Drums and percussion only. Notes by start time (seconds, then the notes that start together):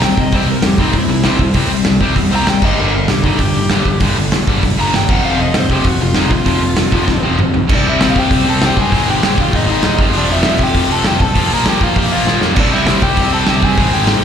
0.02 snare, open hi-hat
0.17 kick
0.32 kick, open hi-hat
0.62 snare, open hi-hat
0.78 kick
0.93 kick, open hi-hat
1.24 snare, open hi-hat
1.39 kick
1.54 kick, open hi-hat
1.85 snare, open hi-hat
2.01 kick
2.16 kick, open hi-hat
2.47 snare, open hi-hat
2.62 kick, crash
3.08 snare, open hi-hat
3.24 kick
3.39 kick, open hi-hat
3.70 snare, open hi-hat
3.85 kick
4.00 kick, open hi-hat
4.32 snare, open hi-hat
4.47 kick
4.63 kick, open hi-hat
4.94 snare, open hi-hat
5.09 kick, crash
5.54 snare, open hi-hat
5.70 kick
5.84 kick, open hi-hat
6.15 snare, open hi-hat
6.31 kick
6.46 kick, open hi-hat
6.77 snare, open hi-hat
6.92 kick
7.08 kick, snare
7.23 high tom
7.39 mid tom
7.54 floor tom
7.69 kick, crash
8.01 snare, open hi-hat
8.16 kick
8.31 kick, open hi-hat
8.62 snare, open hi-hat
8.77 kick
8.92 kick, open hi-hat
9.23 snare, open hi-hat
9.38 kick
9.53 kick, open hi-hat
9.83 snare, open hi-hat
9.99 kick
10.13 open hi-hat
10.43 snare, open hi-hat
10.59 kick
10.74 kick, open hi-hat
11.04 snare, open hi-hat
11.20 kick
11.35 kick, open hi-hat
11.66 snare, open hi-hat
11.81 kick
11.96 kick, open hi-hat
12.27 snare
12.42 snare
12.56 kick, open hi-hat, crash
12.87 snare, open hi-hat
13.02 kick
13.17 kick, open hi-hat
13.47 snare
13.63 kick
13.77 kick, open hi-hat
14.07 snare, open hi-hat